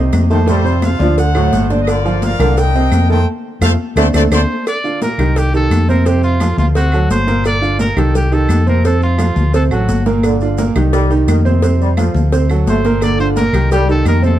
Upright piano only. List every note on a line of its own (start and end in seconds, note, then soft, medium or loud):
0.00 0.24 C3 medium
0.00 0.24 C4 medium
0.00 0.24 D#5 medium
0.30 0.45 A3 medium
0.30 0.45 A4 medium
0.30 0.45 A5 medium
0.46 0.61 A2 medium
0.46 0.61 A3 medium
0.46 0.62 A4 medium
0.64 0.93 C3 medium
0.64 0.93 C4 medium
0.64 0.94 C5 medium
0.99 1.28 D3 medium
0.99 1.28 D4 medium
0.99 1.28 D5 medium
1.35 1.64 A2 loud
1.35 1.64 A3 loud
1.35 1.64 A4 medium
1.70 1.98 D3 medium
1.70 1.99 D4 medium
1.70 1.99 D5 medium
2.05 2.34 F3 medium
2.05 2.34 F4 medium
2.05 2.34 F5 medium
2.39 2.68 A#2 loud
2.39 2.68 A#3 loud
2.39 2.68 A#4 loud
2.75 3.03 C3 loud
2.75 3.04 C4 medium
2.75 3.04 D#5 medium
3.10 3.24 A3 medium
3.10 3.24 A4 medium
3.10 3.24 A5 medium
3.62 3.73 A3 medium
3.62 3.73 C4 medium
3.62 3.73 F4 loud
3.97 4.08 A3 loud
3.97 4.08 C4 loud
3.97 4.08 D4 loud
4.14 4.25 A3 loud
4.14 4.25 C4 loud
4.14 4.25 D4 loud
4.31 4.43 A3 medium
4.31 4.43 C4 loud
4.31 4.43 D4 loud
4.84 4.98 D3 medium
4.84 4.98 D4 medium
4.84 4.99 F4 medium
5.02 5.16 A#2 medium
5.02 5.16 A#3 medium
5.02 5.16 A#4 medium
5.19 5.47 D#3 medium
5.19 5.48 D#4 medium
5.19 5.48 G4 medium
5.54 5.82 D#3 medium
5.54 5.82 D#4 medium
5.54 5.83 G4 medium
5.88 6.03 C3 loud
5.88 6.03 C4 medium
5.88 6.03 C5 loud
6.06 6.34 C3 medium
6.06 6.35 C4 medium
6.06 6.35 C5 medium
6.41 6.69 F3 medium
6.41 6.70 F4 medium
6.41 6.70 A4 medium
6.75 6.90 C3 medium
6.75 6.90 C4 medium
6.75 6.90 C5 medium
6.93 7.21 F#3 medium
6.93 7.21 F#4 medium
6.93 7.22 A4 medium
7.27 7.56 A#2 loud
7.27 7.56 A#3 loud
7.27 7.56 A#4 loud
7.62 7.76 D3 medium
7.62 7.76 D4 medium
7.62 7.77 F4 medium
7.79 7.93 A#2 medium
7.79 7.94 A#3 medium
7.79 7.94 A#4 medium
7.97 8.26 D#3 medium
7.97 8.25 D#4 medium
7.97 8.26 G4 medium
8.31 8.60 D#3 medium
8.31 8.61 D#4 medium
8.31 8.61 G4 medium
8.66 8.81 C3 loud
8.66 8.81 C4 medium
8.66 8.81 C5 medium
8.84 9.13 C3 medium
8.84 9.13 C4 medium
8.84 9.13 C5 medium
9.18 9.47 F3 medium
9.18 9.47 F4 medium
9.18 9.47 A4 medium
9.53 9.68 C3 medium
9.53 9.68 C4 medium
9.53 9.68 C5 medium
9.71 10.00 F#3 medium
9.71 10.00 F#4 medium
9.71 10.00 A4 medium
10.06 10.35 A#2 loud
10.06 10.35 A#3 medium
10.06 10.35 A#4 medium
10.42 10.56 D3 medium
10.42 10.56 D4 medium
10.42 10.56 F4 medium
10.58 10.72 A#2 medium
10.58 10.73 A#3 medium
10.58 10.73 A#4 medium
10.76 11.04 D#3 medium
10.76 11.04 D#4 medium
10.76 11.04 G4 medium
11.10 11.39 D#3 medium
11.10 11.39 D#4 medium
11.10 11.39 G4 medium
11.45 11.59 C3 loud
11.45 11.60 C4 medium
11.45 11.60 C5 medium
11.63 11.91 C3 medium
11.63 11.91 C4 medium
11.63 11.92 C5 medium
11.97 12.26 F3 medium
11.97 12.26 F4 medium
11.97 12.26 A4 medium
12.32 12.47 C3 medium
12.32 12.47 C4 loud
12.32 12.47 C5 medium
12.50 12.79 F#3 medium
12.50 12.79 F#4 medium
12.50 12.79 A4 medium
12.85 13.13 A#2 loud
12.85 13.14 A#3 loud
12.85 13.14 A#4 loud
13.19 13.33 D3 medium
13.19 13.34 D4 medium
13.19 13.34 F4 medium
13.36 13.51 A#2 medium
13.36 13.51 A#3 medium
13.36 13.51 A#4 medium
13.53 13.82 D#3 medium
13.53 13.82 D#4 medium
13.53 13.83 G4 medium
13.89 14.17 D#3 medium
13.89 14.17 D#4 medium
13.89 14.17 G4 medium
14.22 14.37 C3 loud
14.22 14.37 C4 medium
14.22 14.37 C5 medium